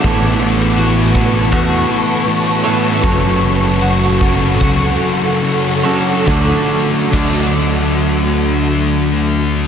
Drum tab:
CC |--------|--------|--x-----|
HH |o-o-o-o-|o-o-o-o-|--------|
SD |--------|--------|o-------|
BD |o--oo---|o--oo---|o-o-----|